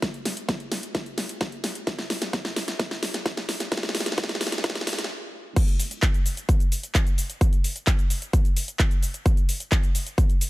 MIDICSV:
0, 0, Header, 1, 2, 480
1, 0, Start_track
1, 0, Tempo, 461538
1, 27, Time_signature, 4, 2, 24, 8
1, 10919, End_track
2, 0, Start_track
2, 0, Title_t, "Drums"
2, 25, Note_on_c, 9, 36, 112
2, 25, Note_on_c, 9, 38, 87
2, 25, Note_on_c, 9, 42, 54
2, 129, Note_off_c, 9, 36, 0
2, 129, Note_off_c, 9, 38, 0
2, 129, Note_off_c, 9, 42, 0
2, 146, Note_on_c, 9, 42, 26
2, 250, Note_off_c, 9, 42, 0
2, 265, Note_on_c, 9, 38, 85
2, 265, Note_on_c, 9, 46, 108
2, 369, Note_off_c, 9, 38, 0
2, 369, Note_off_c, 9, 46, 0
2, 384, Note_on_c, 9, 42, 56
2, 488, Note_off_c, 9, 42, 0
2, 505, Note_on_c, 9, 36, 121
2, 506, Note_on_c, 9, 38, 87
2, 506, Note_on_c, 9, 42, 53
2, 609, Note_off_c, 9, 36, 0
2, 610, Note_off_c, 9, 38, 0
2, 610, Note_off_c, 9, 42, 0
2, 625, Note_on_c, 9, 42, 27
2, 729, Note_off_c, 9, 42, 0
2, 744, Note_on_c, 9, 38, 85
2, 744, Note_on_c, 9, 46, 92
2, 848, Note_off_c, 9, 38, 0
2, 848, Note_off_c, 9, 46, 0
2, 865, Note_on_c, 9, 42, 52
2, 969, Note_off_c, 9, 42, 0
2, 985, Note_on_c, 9, 36, 118
2, 985, Note_on_c, 9, 38, 91
2, 985, Note_on_c, 9, 42, 54
2, 1089, Note_off_c, 9, 36, 0
2, 1089, Note_off_c, 9, 38, 0
2, 1089, Note_off_c, 9, 42, 0
2, 1105, Note_on_c, 9, 42, 27
2, 1209, Note_off_c, 9, 42, 0
2, 1224, Note_on_c, 9, 38, 91
2, 1224, Note_on_c, 9, 46, 102
2, 1328, Note_off_c, 9, 38, 0
2, 1328, Note_off_c, 9, 46, 0
2, 1344, Note_on_c, 9, 42, 55
2, 1448, Note_off_c, 9, 42, 0
2, 1464, Note_on_c, 9, 38, 91
2, 1464, Note_on_c, 9, 42, 50
2, 1466, Note_on_c, 9, 36, 117
2, 1568, Note_off_c, 9, 38, 0
2, 1568, Note_off_c, 9, 42, 0
2, 1570, Note_off_c, 9, 36, 0
2, 1583, Note_on_c, 9, 42, 26
2, 1687, Note_off_c, 9, 42, 0
2, 1703, Note_on_c, 9, 38, 91
2, 1703, Note_on_c, 9, 46, 88
2, 1807, Note_off_c, 9, 38, 0
2, 1807, Note_off_c, 9, 46, 0
2, 1824, Note_on_c, 9, 42, 51
2, 1928, Note_off_c, 9, 42, 0
2, 1945, Note_on_c, 9, 38, 94
2, 1945, Note_on_c, 9, 42, 58
2, 1946, Note_on_c, 9, 36, 112
2, 2049, Note_off_c, 9, 38, 0
2, 2049, Note_off_c, 9, 42, 0
2, 2050, Note_off_c, 9, 36, 0
2, 2065, Note_on_c, 9, 38, 79
2, 2065, Note_on_c, 9, 42, 28
2, 2169, Note_off_c, 9, 38, 0
2, 2169, Note_off_c, 9, 42, 0
2, 2185, Note_on_c, 9, 38, 96
2, 2185, Note_on_c, 9, 46, 101
2, 2289, Note_off_c, 9, 38, 0
2, 2289, Note_off_c, 9, 46, 0
2, 2306, Note_on_c, 9, 38, 91
2, 2306, Note_on_c, 9, 42, 59
2, 2410, Note_off_c, 9, 38, 0
2, 2410, Note_off_c, 9, 42, 0
2, 2426, Note_on_c, 9, 36, 116
2, 2427, Note_on_c, 9, 38, 93
2, 2427, Note_on_c, 9, 42, 53
2, 2530, Note_off_c, 9, 36, 0
2, 2531, Note_off_c, 9, 38, 0
2, 2531, Note_off_c, 9, 42, 0
2, 2547, Note_on_c, 9, 38, 84
2, 2547, Note_on_c, 9, 42, 28
2, 2651, Note_off_c, 9, 38, 0
2, 2651, Note_off_c, 9, 42, 0
2, 2667, Note_on_c, 9, 38, 100
2, 2667, Note_on_c, 9, 46, 90
2, 2771, Note_off_c, 9, 38, 0
2, 2771, Note_off_c, 9, 46, 0
2, 2787, Note_on_c, 9, 38, 81
2, 2787, Note_on_c, 9, 42, 54
2, 2891, Note_off_c, 9, 38, 0
2, 2891, Note_off_c, 9, 42, 0
2, 2907, Note_on_c, 9, 36, 113
2, 2908, Note_on_c, 9, 38, 96
2, 2908, Note_on_c, 9, 42, 54
2, 3011, Note_off_c, 9, 36, 0
2, 3012, Note_off_c, 9, 38, 0
2, 3012, Note_off_c, 9, 42, 0
2, 3028, Note_on_c, 9, 38, 81
2, 3028, Note_on_c, 9, 42, 27
2, 3132, Note_off_c, 9, 38, 0
2, 3132, Note_off_c, 9, 42, 0
2, 3148, Note_on_c, 9, 38, 100
2, 3148, Note_on_c, 9, 46, 105
2, 3252, Note_off_c, 9, 38, 0
2, 3252, Note_off_c, 9, 46, 0
2, 3269, Note_on_c, 9, 38, 88
2, 3269, Note_on_c, 9, 42, 57
2, 3373, Note_off_c, 9, 38, 0
2, 3373, Note_off_c, 9, 42, 0
2, 3387, Note_on_c, 9, 36, 111
2, 3389, Note_on_c, 9, 38, 96
2, 3389, Note_on_c, 9, 42, 52
2, 3491, Note_off_c, 9, 36, 0
2, 3493, Note_off_c, 9, 38, 0
2, 3493, Note_off_c, 9, 42, 0
2, 3509, Note_on_c, 9, 38, 93
2, 3509, Note_on_c, 9, 42, 28
2, 3613, Note_off_c, 9, 38, 0
2, 3613, Note_off_c, 9, 42, 0
2, 3627, Note_on_c, 9, 38, 99
2, 3627, Note_on_c, 9, 46, 89
2, 3731, Note_off_c, 9, 38, 0
2, 3731, Note_off_c, 9, 46, 0
2, 3747, Note_on_c, 9, 38, 86
2, 3747, Note_on_c, 9, 42, 56
2, 3851, Note_off_c, 9, 38, 0
2, 3851, Note_off_c, 9, 42, 0
2, 3866, Note_on_c, 9, 38, 104
2, 3866, Note_on_c, 9, 42, 57
2, 3867, Note_on_c, 9, 36, 116
2, 3925, Note_off_c, 9, 38, 0
2, 3925, Note_on_c, 9, 38, 95
2, 3970, Note_off_c, 9, 42, 0
2, 3971, Note_off_c, 9, 36, 0
2, 3985, Note_off_c, 9, 38, 0
2, 3985, Note_on_c, 9, 38, 93
2, 3985, Note_on_c, 9, 42, 28
2, 4045, Note_off_c, 9, 38, 0
2, 4045, Note_on_c, 9, 38, 93
2, 4089, Note_off_c, 9, 42, 0
2, 4105, Note_off_c, 9, 38, 0
2, 4105, Note_on_c, 9, 38, 107
2, 4105, Note_on_c, 9, 46, 108
2, 4164, Note_off_c, 9, 38, 0
2, 4164, Note_on_c, 9, 38, 90
2, 4209, Note_off_c, 9, 46, 0
2, 4224, Note_off_c, 9, 38, 0
2, 4224, Note_on_c, 9, 38, 93
2, 4224, Note_on_c, 9, 42, 58
2, 4285, Note_off_c, 9, 38, 0
2, 4285, Note_on_c, 9, 38, 96
2, 4328, Note_off_c, 9, 42, 0
2, 4345, Note_off_c, 9, 38, 0
2, 4345, Note_on_c, 9, 38, 103
2, 4345, Note_on_c, 9, 42, 56
2, 4346, Note_on_c, 9, 36, 120
2, 4405, Note_off_c, 9, 38, 0
2, 4405, Note_on_c, 9, 38, 94
2, 4449, Note_off_c, 9, 42, 0
2, 4450, Note_off_c, 9, 36, 0
2, 4464, Note_off_c, 9, 38, 0
2, 4464, Note_on_c, 9, 38, 94
2, 4464, Note_on_c, 9, 42, 29
2, 4524, Note_off_c, 9, 38, 0
2, 4524, Note_on_c, 9, 38, 93
2, 4568, Note_off_c, 9, 42, 0
2, 4585, Note_off_c, 9, 38, 0
2, 4585, Note_on_c, 9, 38, 110
2, 4585, Note_on_c, 9, 46, 89
2, 4645, Note_off_c, 9, 38, 0
2, 4645, Note_on_c, 9, 38, 97
2, 4689, Note_off_c, 9, 46, 0
2, 4704, Note_off_c, 9, 38, 0
2, 4704, Note_on_c, 9, 38, 91
2, 4704, Note_on_c, 9, 42, 55
2, 4764, Note_off_c, 9, 38, 0
2, 4764, Note_on_c, 9, 38, 94
2, 4808, Note_off_c, 9, 42, 0
2, 4826, Note_off_c, 9, 38, 0
2, 4826, Note_on_c, 9, 38, 106
2, 4826, Note_on_c, 9, 42, 58
2, 4827, Note_on_c, 9, 36, 121
2, 4884, Note_off_c, 9, 38, 0
2, 4884, Note_on_c, 9, 38, 95
2, 4930, Note_off_c, 9, 42, 0
2, 4931, Note_off_c, 9, 36, 0
2, 4945, Note_off_c, 9, 38, 0
2, 4945, Note_on_c, 9, 38, 97
2, 4945, Note_on_c, 9, 42, 28
2, 5004, Note_off_c, 9, 38, 0
2, 5004, Note_on_c, 9, 38, 90
2, 5049, Note_off_c, 9, 42, 0
2, 5066, Note_off_c, 9, 38, 0
2, 5066, Note_on_c, 9, 38, 113
2, 5066, Note_on_c, 9, 46, 111
2, 5126, Note_off_c, 9, 38, 0
2, 5126, Note_on_c, 9, 38, 97
2, 5170, Note_off_c, 9, 46, 0
2, 5185, Note_off_c, 9, 38, 0
2, 5185, Note_on_c, 9, 38, 96
2, 5185, Note_on_c, 9, 42, 56
2, 5245, Note_off_c, 9, 38, 0
2, 5245, Note_on_c, 9, 38, 93
2, 5289, Note_off_c, 9, 42, 0
2, 5349, Note_off_c, 9, 38, 0
2, 5787, Note_on_c, 9, 36, 117
2, 5787, Note_on_c, 9, 42, 58
2, 5787, Note_on_c, 9, 49, 107
2, 5792, Note_on_c, 9, 69, 45
2, 5891, Note_off_c, 9, 36, 0
2, 5891, Note_off_c, 9, 42, 0
2, 5891, Note_off_c, 9, 49, 0
2, 5896, Note_off_c, 9, 69, 0
2, 5907, Note_on_c, 9, 42, 27
2, 5912, Note_on_c, 9, 69, 23
2, 6011, Note_off_c, 9, 42, 0
2, 6016, Note_off_c, 9, 69, 0
2, 6027, Note_on_c, 9, 46, 102
2, 6031, Note_on_c, 9, 69, 80
2, 6131, Note_off_c, 9, 46, 0
2, 6135, Note_off_c, 9, 69, 0
2, 6147, Note_on_c, 9, 42, 59
2, 6152, Note_on_c, 9, 69, 35
2, 6251, Note_off_c, 9, 42, 0
2, 6256, Note_off_c, 9, 69, 0
2, 6265, Note_on_c, 9, 39, 122
2, 6267, Note_on_c, 9, 36, 126
2, 6267, Note_on_c, 9, 42, 53
2, 6272, Note_on_c, 9, 69, 43
2, 6369, Note_off_c, 9, 39, 0
2, 6371, Note_off_c, 9, 36, 0
2, 6371, Note_off_c, 9, 42, 0
2, 6376, Note_off_c, 9, 69, 0
2, 6389, Note_on_c, 9, 42, 27
2, 6393, Note_on_c, 9, 69, 22
2, 6493, Note_off_c, 9, 42, 0
2, 6497, Note_off_c, 9, 69, 0
2, 6507, Note_on_c, 9, 46, 94
2, 6512, Note_on_c, 9, 69, 80
2, 6611, Note_off_c, 9, 46, 0
2, 6616, Note_off_c, 9, 69, 0
2, 6628, Note_on_c, 9, 42, 53
2, 6633, Note_on_c, 9, 69, 35
2, 6732, Note_off_c, 9, 42, 0
2, 6737, Note_off_c, 9, 69, 0
2, 6747, Note_on_c, 9, 36, 122
2, 6747, Note_on_c, 9, 42, 56
2, 6752, Note_on_c, 9, 69, 47
2, 6851, Note_off_c, 9, 36, 0
2, 6851, Note_off_c, 9, 42, 0
2, 6856, Note_off_c, 9, 69, 0
2, 6867, Note_on_c, 9, 42, 27
2, 6871, Note_on_c, 9, 69, 22
2, 6971, Note_off_c, 9, 42, 0
2, 6975, Note_off_c, 9, 69, 0
2, 6988, Note_on_c, 9, 46, 106
2, 6992, Note_on_c, 9, 69, 81
2, 7092, Note_off_c, 9, 46, 0
2, 7096, Note_off_c, 9, 69, 0
2, 7108, Note_on_c, 9, 42, 54
2, 7112, Note_on_c, 9, 69, 35
2, 7212, Note_off_c, 9, 42, 0
2, 7216, Note_off_c, 9, 69, 0
2, 7225, Note_on_c, 9, 39, 123
2, 7227, Note_on_c, 9, 36, 116
2, 7227, Note_on_c, 9, 42, 53
2, 7232, Note_on_c, 9, 69, 45
2, 7329, Note_off_c, 9, 39, 0
2, 7331, Note_off_c, 9, 36, 0
2, 7331, Note_off_c, 9, 42, 0
2, 7336, Note_off_c, 9, 69, 0
2, 7348, Note_on_c, 9, 42, 28
2, 7353, Note_on_c, 9, 69, 23
2, 7452, Note_off_c, 9, 42, 0
2, 7457, Note_off_c, 9, 69, 0
2, 7467, Note_on_c, 9, 46, 88
2, 7472, Note_on_c, 9, 69, 78
2, 7571, Note_off_c, 9, 46, 0
2, 7576, Note_off_c, 9, 69, 0
2, 7588, Note_on_c, 9, 42, 54
2, 7593, Note_on_c, 9, 69, 34
2, 7692, Note_off_c, 9, 42, 0
2, 7697, Note_off_c, 9, 69, 0
2, 7707, Note_on_c, 9, 36, 124
2, 7708, Note_on_c, 9, 42, 57
2, 7713, Note_on_c, 9, 69, 43
2, 7811, Note_off_c, 9, 36, 0
2, 7812, Note_off_c, 9, 42, 0
2, 7817, Note_off_c, 9, 69, 0
2, 7828, Note_on_c, 9, 42, 28
2, 7833, Note_on_c, 9, 69, 22
2, 7932, Note_off_c, 9, 42, 0
2, 7937, Note_off_c, 9, 69, 0
2, 7948, Note_on_c, 9, 46, 107
2, 7953, Note_on_c, 9, 69, 74
2, 8052, Note_off_c, 9, 46, 0
2, 8057, Note_off_c, 9, 69, 0
2, 8068, Note_on_c, 9, 42, 57
2, 8073, Note_on_c, 9, 69, 36
2, 8172, Note_off_c, 9, 42, 0
2, 8177, Note_off_c, 9, 69, 0
2, 8185, Note_on_c, 9, 39, 122
2, 8187, Note_on_c, 9, 36, 127
2, 8187, Note_on_c, 9, 42, 54
2, 8192, Note_on_c, 9, 69, 44
2, 8289, Note_off_c, 9, 39, 0
2, 8291, Note_off_c, 9, 36, 0
2, 8291, Note_off_c, 9, 42, 0
2, 8296, Note_off_c, 9, 69, 0
2, 8308, Note_on_c, 9, 42, 28
2, 8313, Note_on_c, 9, 69, 21
2, 8412, Note_off_c, 9, 42, 0
2, 8417, Note_off_c, 9, 69, 0
2, 8427, Note_on_c, 9, 46, 99
2, 8431, Note_on_c, 9, 69, 74
2, 8531, Note_off_c, 9, 46, 0
2, 8535, Note_off_c, 9, 69, 0
2, 8549, Note_on_c, 9, 42, 54
2, 8553, Note_on_c, 9, 69, 30
2, 8653, Note_off_c, 9, 42, 0
2, 8657, Note_off_c, 9, 69, 0
2, 8667, Note_on_c, 9, 36, 124
2, 8667, Note_on_c, 9, 42, 56
2, 8672, Note_on_c, 9, 69, 44
2, 8771, Note_off_c, 9, 36, 0
2, 8771, Note_off_c, 9, 42, 0
2, 8776, Note_off_c, 9, 69, 0
2, 8787, Note_on_c, 9, 42, 26
2, 8792, Note_on_c, 9, 69, 21
2, 8891, Note_off_c, 9, 42, 0
2, 8896, Note_off_c, 9, 69, 0
2, 8908, Note_on_c, 9, 46, 117
2, 8912, Note_on_c, 9, 69, 81
2, 9012, Note_off_c, 9, 46, 0
2, 9016, Note_off_c, 9, 69, 0
2, 9028, Note_on_c, 9, 42, 56
2, 9033, Note_on_c, 9, 69, 34
2, 9132, Note_off_c, 9, 42, 0
2, 9137, Note_off_c, 9, 69, 0
2, 9145, Note_on_c, 9, 39, 116
2, 9148, Note_on_c, 9, 36, 127
2, 9148, Note_on_c, 9, 42, 52
2, 9152, Note_on_c, 9, 69, 42
2, 9249, Note_off_c, 9, 39, 0
2, 9252, Note_off_c, 9, 36, 0
2, 9252, Note_off_c, 9, 42, 0
2, 9256, Note_off_c, 9, 69, 0
2, 9267, Note_on_c, 9, 42, 28
2, 9271, Note_on_c, 9, 69, 22
2, 9371, Note_off_c, 9, 42, 0
2, 9375, Note_off_c, 9, 69, 0
2, 9387, Note_on_c, 9, 46, 98
2, 9392, Note_on_c, 9, 69, 79
2, 9491, Note_off_c, 9, 46, 0
2, 9496, Note_off_c, 9, 69, 0
2, 9507, Note_on_c, 9, 42, 54
2, 9512, Note_on_c, 9, 69, 32
2, 9611, Note_off_c, 9, 42, 0
2, 9616, Note_off_c, 9, 69, 0
2, 9627, Note_on_c, 9, 36, 127
2, 9627, Note_on_c, 9, 42, 51
2, 9631, Note_on_c, 9, 69, 44
2, 9731, Note_off_c, 9, 36, 0
2, 9731, Note_off_c, 9, 42, 0
2, 9735, Note_off_c, 9, 69, 0
2, 9747, Note_on_c, 9, 42, 25
2, 9752, Note_on_c, 9, 69, 22
2, 9851, Note_off_c, 9, 42, 0
2, 9856, Note_off_c, 9, 69, 0
2, 9867, Note_on_c, 9, 46, 115
2, 9872, Note_on_c, 9, 69, 77
2, 9971, Note_off_c, 9, 46, 0
2, 9976, Note_off_c, 9, 69, 0
2, 9987, Note_on_c, 9, 42, 54
2, 9992, Note_on_c, 9, 69, 34
2, 10091, Note_off_c, 9, 42, 0
2, 10096, Note_off_c, 9, 69, 0
2, 10107, Note_on_c, 9, 36, 124
2, 10107, Note_on_c, 9, 39, 125
2, 10109, Note_on_c, 9, 42, 53
2, 10114, Note_on_c, 9, 69, 43
2, 10211, Note_off_c, 9, 36, 0
2, 10211, Note_off_c, 9, 39, 0
2, 10213, Note_off_c, 9, 42, 0
2, 10218, Note_off_c, 9, 69, 0
2, 10228, Note_on_c, 9, 42, 26
2, 10233, Note_on_c, 9, 69, 22
2, 10332, Note_off_c, 9, 42, 0
2, 10337, Note_off_c, 9, 69, 0
2, 10347, Note_on_c, 9, 46, 101
2, 10352, Note_on_c, 9, 69, 77
2, 10451, Note_off_c, 9, 46, 0
2, 10456, Note_off_c, 9, 69, 0
2, 10468, Note_on_c, 9, 42, 52
2, 10473, Note_on_c, 9, 69, 31
2, 10572, Note_off_c, 9, 42, 0
2, 10577, Note_off_c, 9, 69, 0
2, 10587, Note_on_c, 9, 36, 127
2, 10588, Note_on_c, 9, 42, 55
2, 10593, Note_on_c, 9, 69, 43
2, 10691, Note_off_c, 9, 36, 0
2, 10692, Note_off_c, 9, 42, 0
2, 10697, Note_off_c, 9, 69, 0
2, 10708, Note_on_c, 9, 42, 25
2, 10712, Note_on_c, 9, 69, 21
2, 10812, Note_off_c, 9, 42, 0
2, 10816, Note_off_c, 9, 69, 0
2, 10828, Note_on_c, 9, 46, 119
2, 10833, Note_on_c, 9, 69, 76
2, 10919, Note_off_c, 9, 46, 0
2, 10919, Note_off_c, 9, 69, 0
2, 10919, End_track
0, 0, End_of_file